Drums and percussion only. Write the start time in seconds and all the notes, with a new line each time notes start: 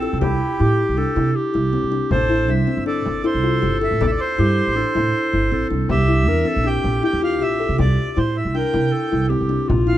0.22 frame drum
1.16 frame drum
2.11 frame drum
3.06 frame drum
4.01 frame drum
4.20 frame drum
4.39 frame drum
4.58 frame drum
4.96 frame drum
5.35 frame drum
5.53 frame drum
5.71 frame drum
5.89 frame drum
6.84 frame drum
7.79 frame drum
8.73 frame drum
9.70 frame drum